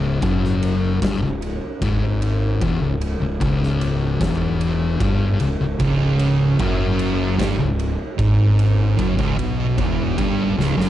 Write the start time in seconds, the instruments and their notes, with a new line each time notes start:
Already playing: fingered electric bass C#1, distorted electric guitar C#2
0.22 fingered electric bass F#1, distorted electric guitar F#2, kick, ride
0.45 snare
0.63 ride
1.02 fingered electric bass G1, distorted electric guitar G2, kick, snare, ride
1.21 fingered electric bass C#1, distorted electric guitar C#2
1.42 ride
1.82 fingered electric bass G#1, distorted electric guitar G#2, kick, ride
2.22 ride
2.61 fingered electric bass E1, distorted electric guitar E2, kick, ride
2.80 fingered electric bass C#1, distorted electric guitar C#2
3.01 ride
3.19 fingered electric bass C#1, distorted electric guitar C#2
3.40 fingered electric bass C#1, distorted electric guitar C#2, kick, ride
3.63 snare
3.81 ride
4.21 fingered electric bass E1, distorted electric guitar E2, kick, snare, ride
4.61 ride
5.00 fingered electric bass G1, distorted electric guitar G2, kick, ride
5.40 fingered electric bass C#1, distorted electric guitar C#2, ride
5.60 fingered electric bass C#1, distorted electric guitar C#2
5.80 fingered electric bass C#1, distorted electric guitar C#2, kick, ride
6.19 ride
6.59 fingered electric bass F#1, distorted electric guitar F#2, kick, ride
6.99 ride
7.39 fingered electric bass G1, distorted electric guitar G2, kick, snare, ride
7.59 fingered electric bass C#1, distorted electric guitar C#2
7.79 ride
8.18 fingered electric bass G#1, distorted electric guitar G#2, kick, ride
8.59 ride
8.99 fingered electric bass F#1, distorted electric guitar F#2, kick, ride
9.18 fingered electric bass C#1, distorted electric guitar C#2, kick
9.38 fingered electric bass B1, distorted electric guitar B2, ride
9.78 fingered electric bass E1, distorted electric guitar E2, kick, ride
10.18 fingered electric bass G1, distorted electric guitar G2, kick, ride
10.57 fingered electric bass C#1, distorted electric guitar C#2, snare
10.77 fingered electric bass F#1, distorted electric guitar F#2, snare